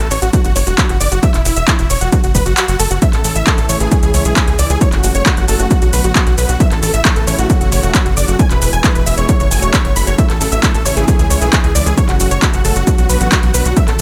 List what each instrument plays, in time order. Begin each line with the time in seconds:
0.11 analog synth bass A1, supersaw synth C#5, open hi-hat, shaker
0.22 analog synth bass A1, supersaw synth F#4, closed hi-hat, shaker
0.33 supersaw synth F#4, kick, closed hi-hat, shaker
0.44 analog synth bass F#1, supersaw synth F#4, closed hi-hat, shaker
0.56 analog synth bass F#1, supersaw synth C#5, open hi-hat, shaker
0.67 analog synth bass E1, supersaw synth F#4, closed hi-hat, shaker
0.78 supersaw synth F#4, kick, clap, closed hi-hat, shaker
0.89 analog synth bass F#1, supersaw synth F#4, closed hi-hat
1.00 analog synth bass F#1, supersaw synth D5, open hi-hat, shaker
1.12 analog synth bass F#1, supersaw synth F#4, closed hi-hat, shaker
1.23 supersaw synth E5, kick, closed hi-hat, shaker
1.34 analog synth bass E1, supersaw synth E4, clap, closed hi-hat, shaker
1.45 analog synth bass E1, supersaw synth E4, open hi-hat, shaker
1.56 analog synth bass E1, supersaw synth E5, closed hi-hat, shaker
1.67 supersaw synth E4, kick, clap, closed hi-hat, shaker
1.79 analog synth bass E1, supersaw synth E4, closed hi-hat, shaker
1.90 analog synth bass E1, supersaw synth C#5, open hi-hat, shaker
2.01 analog synth bass E1, supersaw synth F#4, closed hi-hat, shaker
2.12 supersaw synth F#4, kick, closed hi-hat, shaker
2.24 analog synth bass F#1, supersaw synth F#4, closed hi-hat, shaker
2.35 analog synth bass F#1, supersaw synth B4, kick, open hi-hat, shaker
2.46 analog synth bass F#1, supersaw synth F#4, closed hi-hat, shaker
2.57 supersaw synth F#4, clap, closed hi-hat, shaker
2.68 analog synth bass F#1, supersaw synth F#4, closed hi-hat, shaker
2.79 analog synth bass F#1, supersaw synth A4, open hi-hat, shaker
2.91 analog synth bass F#1, supersaw synth F#4, closed hi-hat, shaker
3.02 analog synth pad C#3 E3 A3 E4, supersaw synth E5, kick, closed hi-hat, shaker
3.13 analog synth bass A1, analog synth pad C#3 E3 A3 E4, supersaw synth A4, clap, closed hi-hat
3.24 analog synth bass A1, supersaw synth A4, open hi-hat, shaker
3.36 analog synth bass A1, supersaw synth E5, closed hi-hat, shaker
3.47 analog synth pad C#3 E3 A3 E4, supersaw synth A4, kick, clap, closed hi-hat, shaker
3.58 analog synth bass A1, supersaw synth A4, closed hi-hat, shaker
3.69 analog synth bass A1, analog synth pad C#3 E3 A3 E4, supersaw synth C#5, open hi-hat, shaker
3.80 analog synth bass A1, supersaw synth G#4, closed hi-hat, shaker
3.91 analog synth pad C#3 E3 G#3 E4, supersaw synth G#4, kick, closed hi-hat, shaker
4.03 analog synth bass C#2, supersaw synth G#4, closed hi-hat, shaker
4.14 analog synth bass C#2, analog synth pad C#3 E3 G#3 E4, supersaw synth C#5, open hi-hat, shaker
4.25 analog synth bass B1, supersaw synth G#4, closed hi-hat, shaker
4.36 supersaw synth G#4, kick, clap, closed hi-hat, shaker
4.48 analog synth bass C#2, supersaw synth G#4, closed hi-hat
4.59 analog synth bass C#2, analog synth pad C#3 E3 G#3 E4, supersaw synth D5, open hi-hat, shaker
4.70 analog synth bass C#2, supersaw synth G#4, closed hi-hat, shaker
4.81 analog synth pad C#3 F#3 A3 F#4, supersaw synth C#5, kick, closed hi-hat, shaker
4.92 analog synth bass F#1, analog synth pad C#3 F#3 A3 F#4, supersaw synth F#4, clap, closed hi-hat
5.03 analog synth bass F#1, supersaw synth F#4, open hi-hat, shaker
5.15 analog synth bass F#1, supersaw synth C#5, closed hi-hat, shaker
5.26 analog synth pad C#3 F#3 A3 F#4, supersaw synth F#4, kick, clap, closed hi-hat, shaker
5.37 analog synth bass F#1, supersaw synth F#4, closed hi-hat, shaker
5.48 analog synth bass F#1, analog synth pad C#3 F#3 A3 F#4, supersaw synth A4, open hi-hat, shaker
5.59 analog synth bass F#1, supersaw synth F#4, closed hi-hat, shaker
5.71 analog synth pad D3 F#3 B3 F#4, supersaw synth F#4, kick, closed hi-hat, shaker
5.82 analog synth bass B1, supersaw synth F#4, closed hi-hat, shaker
5.93 analog synth bass B1, analog synth pad D3 F#3 B3 F#4, supersaw synth B4, open hi-hat, shaker
6.04 analog synth bass A1, supersaw synth F#4, closed hi-hat, shaker
6.15 supersaw synth F#4, kick, clap, closed hi-hat, shaker
6.27 analog synth bass B1, supersaw synth F#4, closed hi-hat
6.38 analog synth bass B1, analog synth pad D3 F#3 B3 F#4, supersaw synth B4, open hi-hat, shaker
6.49 analog synth bass B1, supersaw synth F#4, closed hi-hat, shaker
6.60 analog synth pad C#3 E3 A3 E4, supersaw synth E5, kick, closed hi-hat, shaker
6.71 analog synth bass A1, analog synth pad C#3 E3 A3 E4, supersaw synth A4, clap, closed hi-hat
6.83 analog synth bass A1, supersaw synth A4, open hi-hat, shaker
6.94 analog synth bass A1, supersaw synth E5, closed hi-hat, shaker
7.05 analog synth pad C#3 E3 A3 E4, supersaw synth A4, kick, clap, closed hi-hat, shaker
7.16 analog synth bass A1, supersaw synth A4, closed hi-hat, shaker
7.27 analog synth bass A1, analog synth pad C#3 E3 A3 E4, supersaw synth C#5, open hi-hat, shaker
7.38 analog synth bass A1, supersaw synth F#4, closed hi-hat, shaker
7.50 analog synth pad C#3 F#3 A3 F#4, supersaw synth F#4, kick, closed hi-hat, shaker
7.61 analog synth bass F#1, supersaw synth F#4, closed hi-hat, shaker
7.72 analog synth bass F#1, analog synth pad C#3 F#3 A3 F#4, supersaw synth C#5, open hi-hat, shaker
7.83 analog synth bass E1, supersaw synth F#4, closed hi-hat, shaker
7.94 supersaw synth F#4, kick, clap, closed hi-hat, shaker
8.06 analog synth bass F#1, supersaw synth F#4, closed hi-hat
8.17 analog synth bass F#1, analog synth pad C#3 F#3 A3 F#4, supersaw synth D5, open hi-hat, shaker
8.28 analog synth bass F#1, supersaw synth F#4, closed hi-hat, shaker
8.39 analog synth pad B2 E3 G#3 E4, supersaw synth G#5, kick, closed hi-hat, shaker
8.50 analog synth bass E1, analog synth pad B2 E3 G#3 E4, supersaw synth B4, clap, closed hi-hat, shaker
8.62 analog synth bass E1, supersaw synth B4, open hi-hat, shaker
8.73 analog synth bass E1, supersaw synth G#5, closed hi-hat, shaker
8.84 analog synth pad B2 E3 G#3 E4, supersaw synth B4, kick, clap, closed hi-hat, shaker
8.95 analog synth bass E1, supersaw synth B4, closed hi-hat, shaker
9.06 analog synth bass E1, analog synth pad B2 E3 G#3 E4, supersaw synth E5, open hi-hat, shaker
9.18 analog synth bass E1, supersaw synth C#5, closed hi-hat, shaker
9.29 analog synth pad C#3 F#3 A3 F#4, supersaw synth C#5, kick, closed hi-hat, shaker
9.40 analog synth bass F#1, supersaw synth C#5, closed hi-hat, shaker
9.51 analog synth bass F#1, analog synth pad C#3 F#3 A3 F#4, supersaw synth G#5, open hi-hat, shaker
9.62 analog synth bass E1, supersaw synth C#5, closed hi-hat, shaker
9.73 supersaw synth C#5, kick, clap, closed hi-hat, shaker
9.85 analog synth bass F#1, supersaw synth C#5, closed hi-hat
9.96 analog synth bass F#1, analog synth pad C#3 F#3 A3 F#4, supersaw synth B5, open hi-hat, shaker
10.07 analog synth bass F#1, supersaw synth C#5, closed hi-hat, shaker
10.18 analog synth pad C#3 E3 A3 E4, supersaw synth E5, kick, closed hi-hat, shaker
10.29 analog synth bass A1, analog synth pad C#3 E3 A3 E4, supersaw synth A4, clap, closed hi-hat
10.41 analog synth bass A1, supersaw synth A4, open hi-hat, shaker
10.52 analog synth bass A1, supersaw synth E5, closed hi-hat, shaker
10.63 analog synth pad C#3 E3 A3 E4, supersaw synth A4, kick, clap, closed hi-hat, shaker
10.74 analog synth bass A1, supersaw synth A4, closed hi-hat, shaker
10.85 analog synth bass A1, analog synth pad C#3 E3 A3 E4, supersaw synth C#5, open hi-hat, shaker
10.97 analog synth bass A1, supersaw synth G#4, closed hi-hat, shaker
11.08 analog synth pad C#3 E3 G#3 E4, supersaw synth G#4, kick, closed hi-hat, shaker
11.19 analog synth bass C#2, supersaw synth G#4, closed hi-hat, shaker
11.30 analog synth bass C#2, analog synth pad C#3 E3 G#3 E4, supersaw synth C#5, open hi-hat, shaker
11.41 analog synth bass B1, supersaw synth G#4, closed hi-hat, shaker
11.53 supersaw synth G#4, kick, clap, closed hi-hat, shaker
11.64 analog synth bass C#2, supersaw synth G#4, closed hi-hat
11.75 analog synth bass C#2, analog synth pad C#3 E3 G#3 E4, supersaw synth D5, open hi-hat, shaker
11.86 analog synth bass C#2, supersaw synth G#4, closed hi-hat, shaker
11.97 analog synth pad C#3 F#3 A3 F#4, supersaw synth C#5, kick, closed hi-hat, shaker
12.09 analog synth bass F#1, analog synth pad C#3 F#3 A3 F#4, supersaw synth F#4, clap, closed hi-hat
12.20 analog synth bass F#1, supersaw synth F#4, open hi-hat, shaker
12.31 analog synth bass F#1, supersaw synth C#5, closed hi-hat, shaker
12.42 analog synth pad C#3 F#3 A3 F#4, supersaw synth F#4, kick, clap, closed hi-hat, shaker
12.54 analog synth bass F#1, supersaw synth F#4, closed hi-hat, shaker
12.65 analog synth bass F#1, analog synth pad C#3 F#3 A3 F#4, supersaw synth A4, open hi-hat, shaker
12.76 analog synth bass F#1, supersaw synth F#4, closed hi-hat, shaker
12.87 analog synth pad D3 F#3 B3 F#4, supersaw synth F#4, kick, closed hi-hat, shaker
12.98 analog synth bass B1, supersaw synth F#4, closed hi-hat, shaker
13.09 analog synth bass B1, analog synth pad D3 F#3 B3 F#4, supersaw synth B4, open hi-hat, shaker
13.21 analog synth bass A1, supersaw synth F#4, closed hi-hat, shaker
13.32 supersaw synth F#4, kick, clap, closed hi-hat, shaker
13.43 analog synth bass B1, supersaw synth F#4, closed hi-hat
13.54 analog synth bass B1, analog synth pad D3 F#3 B3 F#4, supersaw synth B4, open hi-hat, shaker
13.65 analog synth bass B1, supersaw synth F#4, closed hi-hat, shaker
13.76 analog synth pad C#3 E3 A3 E4, supersaw synth E5, kick, closed hi-hat, shaker
13.88 analog synth bass A1, analog synth pad C#3 E3 A3 E4, supersaw synth A4, clap, closed hi-hat